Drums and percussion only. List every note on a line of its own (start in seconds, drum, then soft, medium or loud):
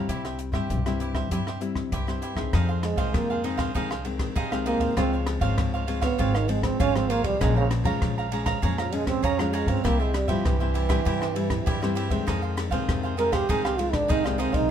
0.09 kick soft
0.09 closed hi-hat medium
0.25 cross-stick medium
0.25 closed hi-hat soft
0.39 closed hi-hat soft
0.53 kick medium
0.53 cross-stick medium
0.70 kick medium
0.70 closed hi-hat soft
0.86 cross-stick medium
0.86 closed hi-hat soft
1.00 closed hi-hat soft
1.15 kick medium
1.15 cross-stick medium
1.31 kick medium
1.31 closed hi-hat medium
1.47 cross-stick medium
1.61 closed hi-hat soft
1.76 kick medium
1.76 cross-stick medium
1.92 kick medium
1.92 closed hi-hat medium
2.08 cross-stick medium
2.22 closed hi-hat soft
2.37 kick medium
2.37 cross-stick medium
2.53 kick medium
2.53 cross-stick medium
2.53 ride soft
2.83 cross-stick medium
2.83 ride soft
2.98 kick medium
2.98 ride soft
3.14 kick medium
3.14 cross-stick medium
3.14 ride soft
3.44 ride soft
3.59 kick medium
3.59 cross-stick medium
3.59 ride soft
3.75 kick medium
3.75 ride soft
3.91 cross-stick medium
4.05 ride soft
4.19 kick medium
4.19 cross-stick medium
4.19 ride soft
4.36 kick medium
4.36 ride soft
4.52 cross-stick medium
4.66 ride soft
4.80 kick medium
4.80 ride soft
4.97 kick medium
4.97 cross-stick medium
4.97 ride soft
5.26 cross-stick medium
5.26 ride soft
5.41 kick medium
5.41 ride soft
5.58 kick medium
5.58 cross-stick medium
5.58 ride soft
5.88 ride soft
6.02 kick medium
6.02 cross-stick medium
6.02 ride medium
6.19 kick medium
6.19 ride soft
6.35 cross-stick medium
6.49 ride medium
6.63 kick medium
6.63 cross-stick medium
6.63 ride soft
6.80 kick medium
6.80 ride soft
6.96 cross-stick medium
7.10 ride medium
7.24 kick medium
7.24 ride medium
7.41 kick medium
7.41 cross-stick medium
7.41 ride soft
7.71 cross-stick medium
7.71 ride soft
7.85 kick medium
7.85 ride soft
8.02 kick medium
8.02 cross-stick medium
8.02 ride soft
8.32 ride medium
8.46 kick medium
8.46 cross-stick medium
8.46 ride soft
8.63 kick medium
8.63 ride soft
8.78 cross-stick medium
8.92 ride medium
9.07 kick medium
9.07 cross-stick medium
9.07 ride soft
9.24 kick medium
9.24 ride soft
9.39 cross-stick medium
9.53 ride medium
9.68 kick medium
9.68 ride soft
9.85 kick medium
9.85 cross-stick medium
9.85 ride soft
10.14 cross-stick medium
10.14 ride soft
10.29 kick medium
10.29 ride soft
10.45 kick medium
10.45 cross-stick medium
10.45 ride soft
10.75 ride soft
10.90 kick medium
10.90 cross-stick medium
10.90 ride soft
11.06 kick medium
11.06 ride soft
11.22 cross-stick medium
11.36 ride soft
11.50 kick medium
11.50 cross-stick medium
11.50 ride soft
11.67 kick medium
11.67 ride soft
11.83 cross-stick medium
11.97 ride medium
12.11 kick medium
12.11 ride soft
12.28 kick medium
12.28 cross-stick medium
12.28 ride soft
12.58 cross-stick medium
12.58 ride medium
12.72 kick medium
12.72 ride soft
12.89 kick medium
12.89 cross-stick medium
12.89 ride soft
13.18 ride medium
13.33 kick medium
13.33 cross-stick medium
13.33 ride soft
13.49 kick medium
13.49 ride medium
13.65 cross-stick medium
13.79 ride soft
13.93 kick medium
13.93 cross-stick medium
13.93 ride soft
14.10 kick medium
14.10 ride medium
14.26 cross-stick medium
14.40 ride soft
14.54 kick medium
14.54 ride soft